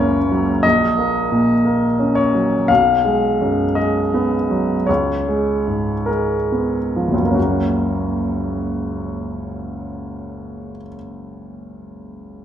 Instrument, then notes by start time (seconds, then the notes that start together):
grand piano
Already playing: F#1 C#2 A#3 A#4 C#5
0.00 C#4
0.31 F#3
0.63 A#1 D#5
0.98 A#3
1.32 A#2
1.65 A#3
1.99 C#4
2.15 C#5
2.35 F#3
2.68 B1 F5
3.05 G#3
3.41 F#2
3.75 G#3 D#5
4.14 B3
4.50 F#3
4.87 C#2 C#5
5.28 G#3
5.68 G#2
6.06 G#3 A#4
6.52 B3
6.96 F3
7.08 F#1
7.14 C#2
7.19 F#3
7.25 A#3
7.31 C#4 F#4